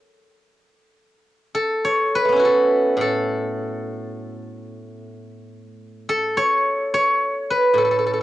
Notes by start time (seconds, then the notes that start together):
Already playing: A4
1.55 A4
1.85 C#5
2.15 B4
2.25 A3 B3
2.32 C#4 E4
2.39 F#4
2.45 A4
2.97 A2
3.01 A4
6.09 A4
6.37 C#5
6.94 C#5
7.50 B4
7.73 A2
7.78 A4
7.84 A4
7.91 A4
7.98 A4
8.06 A4
8.13 A4